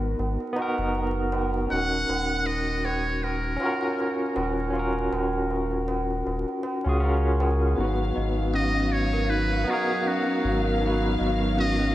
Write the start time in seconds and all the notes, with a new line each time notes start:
Already playing: G#1 B3 D#4 F#4 A#4
0.02 tabla na
0.19 G#1, tabla na
0.40 tabla na
0.53 B3 D#4, tabla na
0.59 F#4 A#4
0.78 F#1, tabla na
0.95 tabla na
1.32 tabla na
1.54 tabla na
1.67 D#1 C#4 D#4, tabla na
1.71 F#4 F#5
1.76 A#4
2.09 D#1, tabla na
2.30 tabla na
2.46 D#5, tabla na
2.68 tabla na
2.85 C#5, tabla na
3.07 tabla na
3.23 A#4, tabla na
3.44 tabla na
3.57 C#4 F4, tabla na
3.63 F#4 A#4
3.82 tabla na
3.99 tabla na
4.36 D#1, tabla na
4.58 tabla na
4.70 C#4 F4
4.75 F#4 A#4, tabla na
5.12 D#1, tabla na
5.33 tabla na
5.51 tabla na
5.71 tabla na
5.88 tabla na
6.10 tabla na
6.26 D#1, tabla na
6.49 tabla na
6.63 tabla na
6.84 C#2 C#4 F4 F#4, tabla na
6.89 G#4
7.00 C#4 F4 F#4, tabla na
7.05 A#4
7.24 tabla na
7.40 tabla na
7.62 tabla na
7.75 G#1 F#3 B3 D#4 F5
7.81 F#4 B4
8.16 G#1 D#5
8.53 C#4 D#5
8.75 C#4
8.92 C#5
9.13 A#4
9.29 D#4 B4
9.64 B3 D#4 D#5
9.70 F#4 G#4 A#4
10.05 C#4 F#4
10.26 C#4
10.44 G#1
10.64 A#4
10.78 B3 D#4
10.85 F#4 B4
11.19 G#1 D#5
11.57 C#4 D#5
11.79 C#4